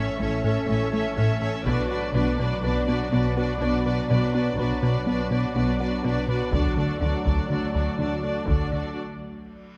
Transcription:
Already playing: A1 A2 E3 A3 C#4 A4 C#5 E5
0.19 A1 A2 A3 C#4 A4 C#5 E5
0.43 A2 A3 C#4 A4 C#5 E5
0.68 A1 A2 A3 C#4 A4 C#5 E5
0.93 A3 C#4 E4 A4 C#5 E5
1.17 A1 A2 A3 C#4 A4 C#5 E5
1.42 A2 C#4 A4 C#5 E5
1.65 B1 B2 F#3 B3 D4 F#4 B4 D5, taiko
1.90 B3 D4 F#4 B4 D5
2.14 B1 B2 D4 F#4 B4 D5
2.39 B2 B3 D4 F#4 B4 D5, taiko
2.63 B1 B2 B3 D4 F#4 B4 D5
2.87 B2 B3 D4 F#4 B4 D5
3.12 B1 B2 B3 D4 F#4 B4 D5
3.37 B3 D4 F#4 B4 D5
3.60 B1 B2 B3 D4 F#4 B4 D5
3.85 B2 D4 F#4 B4 D5
4.09 B1 B2 B3 D4 F#4 B4 D5
4.35 B3 D4 F#4 B4 D5
4.58 B1 B2 D4 F#4 B4 D5
4.83 B2 B3 D4 F#4 B4 D5
5.07 B1 B2 B3 D4 F#4 B4 D5
5.31 B2 B3 D4 F#4 B4 D5
5.55 B1 B2 B3 D4 F#4 B4 D5
5.80 B3 D4 F#4 B4 D5
6.04 B1 B2 B3 D4 F#4 B4 D5
6.28 B2 D4 F#4 B4 D5
6.52 D2 D3 F#3 A3 D4 F#4 A4 D5, taiko
6.77 D3 A3 D4 F#4 A4 D5
7.01 D2 D3 D4 F#4 A4 D5
7.26 D2 D3 D4 F#4 A4 D5, taiko
7.50 D2 D3 D4 F#4 A4 D5
7.74 D2 D3 D4 F#4 A4 D5
7.99 D2 D3 D4 F#4 A4 D5
8.23 D3 A3 D4 F#4 A4 D5
8.47 D2 D3 D4 F#4 A4 D5, taiko
8.72 D2 D4 F#4 A4
8.76 D5
8.98 reverse cymbal

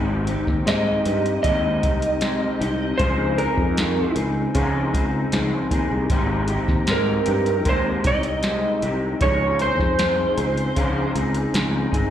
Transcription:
Already playing: G#1 G#3 C4 D#4 G4
0.27 C4 D#4 G4, closed hi-hat
0.47 D#2, kick, snare
0.66 G#2 G#3 C4 D#4 G4 D#5, snare, closed hi-hat
1.05 G2 C4 D#4 G4, closed hi-hat
1.26 closed hi-hat
1.43 D#2 G#3 C4 D#4 G4 D#5, kick, closed hi-hat
1.82 C2 C4 D#4 G4, kick, closed hi-hat
2.02 closed hi-hat
2.21 G#3 C4 D#4 G4, snare, closed hi-hat
2.60 C2 C4 D#4 G4, closed hi-hat
2.98 C#2 C#3 F3 C4 D#4 G#4 C5, kick, closed hi-hat
3.38 C4 D#4 G#4 A#4, closed hi-hat
3.57 F2, kick
3.77 F3 C4 D#4 G#4, snare, closed hi-hat
4.16 C#2 C4 D#4 G#4, closed hi-hat
4.54 C#3 F3 C4 D#4 G#4, kick, closed hi-hat
4.94 C#2 C4 D#4 G#4, kick, closed hi-hat
5.32 C#2 F3 C4 D#4 G#4, snare, closed hi-hat
5.71 D#2 C4 D#4 G#4, kick, closed hi-hat
5.91 C2
6.10 G#1 G#3 C4 D#4 G4, kick, closed hi-hat
6.48 C4 D#4 G4, closed hi-hat
6.68 D#2, kick, snare
6.87 G#2 G#3 C4 D#4 G4, snare, closed hi-hat
6.91 A#4
7.26 G2 C4 D#4 G4, closed hi-hat
7.46 closed hi-hat
7.65 D#2 G#3 C4 D#4 G4 C5, kick, closed hi-hat
8.03 C2 C4 D#4 G4, kick, closed hi-hat
8.07 D#5
8.23 closed hi-hat
8.43 G#3 C4 D#4 G4, snare, closed hi-hat
8.82 C2 C4 D#4 G4, closed hi-hat
9.21 C#2 C#3 F3 D#4 G#4 C#5, kick, closed hi-hat
9.59 C4 D#4 G#4 C5, closed hi-hat
9.79 F2, kick, snare
9.98 F3 C4 D#4 G#4, snare, closed hi-hat
10.38 C#2 C4 D#4 G#4, closed hi-hat
10.57 closed hi-hat
10.76 C#3 F3 C4 D#4 G#4, kick, closed hi-hat
11.15 C#2 C4 D#4 G#4, closed hi-hat
11.34 closed hi-hat
11.54 C#2 F3 C4 D#4 G#4, snare, closed hi-hat
11.92 G1 C4 D#4 G#4, kick, closed hi-hat

